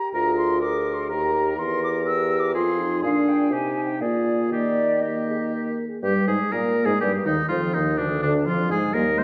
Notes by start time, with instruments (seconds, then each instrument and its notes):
Already playing: french horn G4, flute A#5
0.12 bassoon D2, french horn F4, clarinet G#4, oboe A#4, flute A#5
0.38 flute C6
0.61 clarinet G#4, oboe A#4, french horn A#4, flute D6
0.94 flute C6
1.09 bassoon D#2, clarinet G4, french horn G4, oboe A#4, flute A#5
1.58 bassoon E2, french horn E4, clarinet G4, oboe A#4, flute C6
1.84 flute D6
2.05 french horn G4, clarinet G4, oboe A#4, flute E6
2.40 flute D6
2.54 bassoon F2, clarinet F4, french horn F4, oboe G#4, flute C6
2.79 clarinet D#4
3.02 bassoon A#2, french horn D4, clarinet D4, oboe G#4, flute F5
3.28 flute G5
3.51 bassoon C3, french horn D#4, clarinet D#4, oboe G4, flute G#5
3.86 flute G5
4.01 bassoon A#2, clarinet A#3, french horn F4, oboe G#4, flute D5
4.51 bassoon D#3, clarinet A#3, french horn G4, oboe G4, flute D5
5.01 clarinet A#3, oboe G4, french horn G4, flute D#5
5.28 french horn G#4
5.53 french horn A#4
5.88 french horn G#4
6.02 bassoon G2, french horn G3, clarinet G3, flute G4, oboe G4
6.27 bassoon G#2, french horn G#3, clarinet G#3, flute G#4, oboe G#4
6.52 bassoon A#2, french horn A#3, clarinet A#3, flute A#4, oboe A#4
6.84 bassoon G#2, french horn G#3, clarinet G#3, flute G#4, oboe G#4
7.00 bassoon G2, french horn G3, clarinet G3, flute G4, oboe G4
7.25 bassoon D#2, french horn D#3, clarinet D#3, flute D#4, oboe D#4
7.49 bassoon F2, french horn F3, clarinet F3, oboe F4, flute F4
7.73 bassoon D#2, clarinet D#3, french horn D#3, flute D#4, oboe D#4
7.98 bassoon D2, clarinet D3, french horn D3, oboe D4, flute D4
8.21 bassoon D2, clarinet D3, french horn D3, flute D4, oboe D4
8.45 bassoon F2, clarinet F3, french horn F3, flute F4, oboe F4
8.69 bassoon G#2, clarinet G#3, french horn G#3, flute G#4, oboe G#4
8.93 bassoon D#2, french horn G3, clarinet A#3, oboe A#4, flute D#5
9.17 french horn G3, clarinet A#3, oboe C5, flute D#5